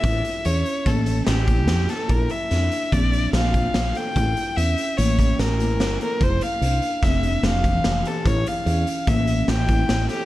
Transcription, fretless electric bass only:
\new Staff \with { instrumentName = "Fretless electric bass" } { \clef bass \time 5/4 \key a \phrygian \tempo 4 = 146 a,,8 r8 e,8 r8 a,,4 a,,4 f,8 r8 | bes,,8 r8 f,8 r8 bes,,4 bes,,4 bes,,8 r8 | a,,8 r8 e,8 r8 a,,4 a,,4 g,,8 r8 | f,,8 r8 c,8 r8 f,,4 f,,4 f,,8 r8 |
a,,8 r8 e,8 r8 a,,4 a,,4 a,,8 r8 | }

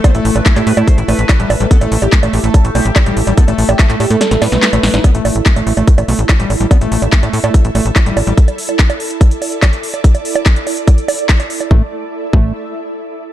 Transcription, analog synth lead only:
\new Staff \with { instrumentName = "Analog synth lead" } { \time 4/4 \key c \major \tempo 4 = 144 c''16 e'16 e'16 b'16 e'16 e'16 b'16 e'16 c''16 e'16 b'4~ b'16 r16 | a'16 a16 a16 g'16 a16 a16 g'16 a16 a'16 a16 g'4~ g'16 r16 | a'16 a16 a16 g'16 a16 a16 g'16 a16 a'16 a16 b'4~ b'16 r16 | r1 |
r1 | r1 | r1 | r1 | }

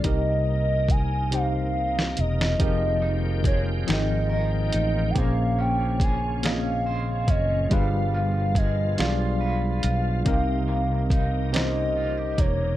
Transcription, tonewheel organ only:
\new Staff \with { instrumentName = "Tonewheel organ" } { \time 6/8 \key c \phrygian \tempo 4. = 47 << { <c ees'>2. | <ees f g''>2. | <des des'>2. | <b, f'>2. |
<c ees'>2. | } \\ { bes2.~ | bes2. | r2. | r2. |
bes2. | } >> }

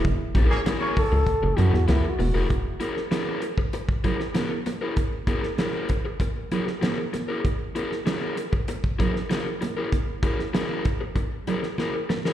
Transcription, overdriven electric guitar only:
\new Staff \with { instrumentName = "Overdriven electric guitar" } { \time 4/4 \key e \lydian \tempo 4 = 97 r8 <e' gis' ais'>16 r16 <e' gis' ais'>8 r4 <e' gis' ais'>16 r16 <e' gis' ais'>16 r8 <e' gis' ais'>16 | r8 <e' gis' ais'>16 r16 <e' gis' ais'>8 r4 <e' gis' ais'>16 r16 <e' gis' ais'>16 r8 <e' gis' ais'>16 | r8 <e' gis' ais'>16 r16 <e' gis' ais'>8 r4 <e' gis' ais'>16 r16 <e' gis' ais'>16 r8 <e' gis' ais'>16 | r8 <e' gis' ais'>16 r16 <e' gis' ais'>8 r4 <e' gis' ais'>16 r16 <e' gis' ais'>16 r8 <e' gis' ais'>16 |
r8 <e' gis' ais'>16 r16 <e' gis' ais'>8 r4 <e' gis' ais'>16 r16 <e' gis' ais'>16 r8 <e' gis' ais'>16 | }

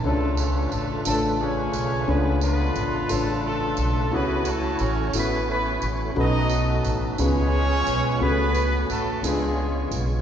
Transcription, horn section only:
\new Staff \with { instrumentName = "Horn section" } { \time 6/8 \key cis \phrygian \tempo 4. = 59 << { <a a'>8 <cis' cis''>8 <a a'>8 <a a'>8 <cis' cis''>4 | <b b'>8 <b b'>4 <a a'>8 <a a'>4 | <b b'>8 <a a'>8 <cis' cis''>8 <b b'>8 <b b'>8 r8 | <dis' dis''>4 r8 <cis' cis''>4. |
<b b'>4 <a a'>8 <gis gis'>4 r8 | } \\ { <d' eis'>4. r8 <eis' gis'>4 | <d' eis'>8 <d' eis'>4. <d' eis'>4 | <e' fis'>4. r4. | <fis' a'>4. <eis' gis'>4. |
fis'4. <b eis'>4. | } >> }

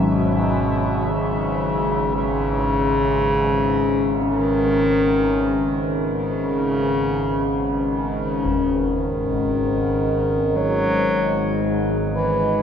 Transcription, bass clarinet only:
\new Staff \with { instrumentName = "Bass clarinet" } { \clef bass \time 4/4 \key gis \minor \tempo 4 = 57 b,4 cis4 cis2 | dis4.~ dis16 r16 cis4. r8 | dis2 fis4 r8 e8 | }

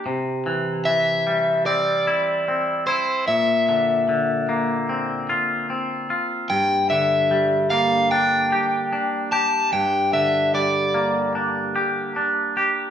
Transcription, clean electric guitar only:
\new Staff \with { instrumentName = "Clean electric guitar" } { \time 4/4 \key g \dorian \tempo 4 = 74 c8 e8 e8 g8 c'8 e'8 c'8 e'8 | bes,8 d8 d8 bes8 c'8 f'8 c'8 f'8 | g,8 d8 g8 bes8 d'8 g'8 d'8 g'8 | g,8 d8 g8 bes8 d'8 g'8 d'8 g'8 | }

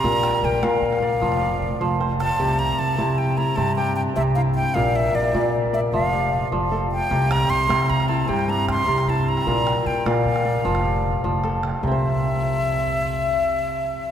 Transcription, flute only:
\new Staff \with { instrumentName = "Flute" } { \time 12/8 \key c \mixolydian \tempo 4. = 102 bes''4 g''8 f''1 a''8~ | a''8 bes''8 a''4 g''8 bes''8 a''8 g''8 g''8 e''8 f''8 g''8 | f''8 e''8 d''4 r8 e''8 f''4. r4 g''8~ | g''8 bes''8 c'''4 bes''8 a''8 g''8 bes''8 c'''4 a''8 bes''8~ |
bes''4 g''8 f''1 r8 | e''1. | }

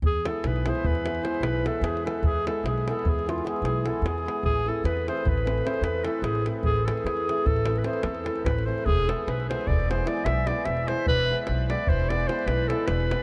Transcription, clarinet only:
\new Staff \with { instrumentName = "Clarinet" } { \time 11/8 \tempo 4 = 150 gis'8 a'8 b'8 c''8 b'4 c''8 b'8 a'8 gis'8 a'8 | gis'8 a'8 gis'8 a'8 gis'8 f'8 gis'8 gis'8 a'8 gis'4 | gis'8 a'8 b'8 c''8 b'4 c''8 b'8 a'8 gis'8 r8 | gis'8 a'8 gis'4 a'8. b'16 c''8 a'4 b'8 c''8 |
gis'8 a'8 b'8 c''8 d''8 c''8 d''8 e''8 d''8 e''8 c''8 | b'8. r8. d''8 c''8 d''8 c''8 b'8 a'8 b'4 | }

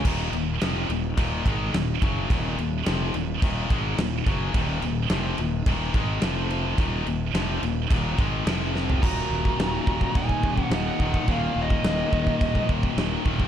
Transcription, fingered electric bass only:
\new Staff \with { instrumentName = "Fingered electric bass" } { \clef bass \time 4/4 \key ees \minor \tempo 4 = 107 ees,,8 ees,,8 f,,8 ees,,8 ees,,8 aes,,8 ees,,8 ges,,8 | ees,,8 ees,,8 f,,8 ees,,8 ees,,8 aes,,8 ees,,8 ges,,8 | ees,,8 ees,,8 f,,8 ees,,8 ees,,8 aes,,8 f,,4 | ees,,8 ees,,8 f,,8 ees,,8 ees,,8 aes,,8 f,,4 |
ees,,8 ees,,8 ees,,8 ees,,8 ees,,8 ees,,8 ees,,8 ees,,8 | ees,,8 ees,,8 ees,,8 ees,,8 ees,,8 ees,,8 ees,,8 ees,,8 | }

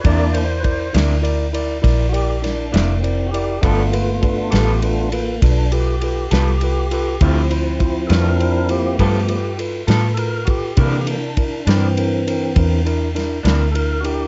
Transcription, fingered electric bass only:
\new Staff \with { instrumentName = "Fingered electric bass" } { \clef bass \time 12/8 \key c \major \tempo 4. = 67 e,4. d,4. bes,,4. f,,4. | g,,4. a,,4. b,,4. c,4. | d,4. f,4. g,4. a,4. | c4. g,4. e,4. d,4. | }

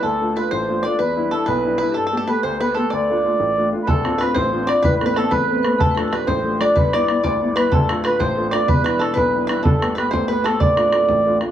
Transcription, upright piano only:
\new Staff \with { instrumentName = "Upright piano" } { \time 6/8 \key d \dorian \tempo 4. = 125 d,8 <a d' f'>8 <a d' f'>8 a,,8 <a d' f'>8 <a d' f'>8 | e,8 <g d' e'>8 <g d' e'>8 b,,8 <g d' e'>8 <g d' e'>8 | g,8 <a b g'>8 <a b g'>8 d,8 <a b g'>8 <a b g'>8 | d,8 <a d' f'>8 <a d' f'>8 a,,8 <a d' f'>8 <a d' f'>8 |
<d,, d,>8 <c' d' f'>8 <c' d' f'>8 a,,8 <c' d' f'>8 <c' d' f'>8 | <a,, a,>8 <a b c'>8 <a b c'>8 e,8 <a b c'>8 <a b c'>8 | <d,, d,>8 <f a d'>8 <f a d'>8 a,,8 <f a d'>8 <f a d'>8 | <g,, g,>8 <g b e'>8 <g b e'>8 d,8 <g b e'>8 <g b e'>8 |
<d,, d,>8 <a d' f'>8 <a d' f'>8 a,,8 <a d' f'>8 <a d' f'>8 | <e,, e,>8 <g d' e'>8 <g d' e'>8 b,,8 <g d' e'>8 <g d' e'>8 | <g,, g,>8 <a b g'>8 <a b g'>8 d,8 <a b g'>8 <a b g'>8 | <d,, d,>8 <a d' f'>8 <a d' f'>8 a,,8 <a d' f'>8 <a d' f'>8 | }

